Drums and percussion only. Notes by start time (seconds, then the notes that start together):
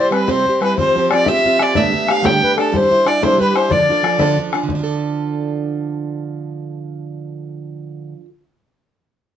0.12 bodhran
0.28 bodhran
0.46 bodhran
0.62 bodhran
0.78 bodhran
0.96 bodhran
1.11 bodhran
1.26 bodhran
1.45 bodhran
1.59 bodhran
1.75 bodhran
1.93 bodhran
2.08 bodhran
2.25 bodhran
2.43 bodhran
2.58 bodhran
2.74 bodhran
2.91 bodhran
3.07 bodhran
3.23 bodhran
3.40 bodhran
3.56 bodhran
3.71 bodhran
3.89 bodhran
4.04 bodhran
4.19 bodhran
4.38 bodhran
4.53 bodhran
4.69 bodhran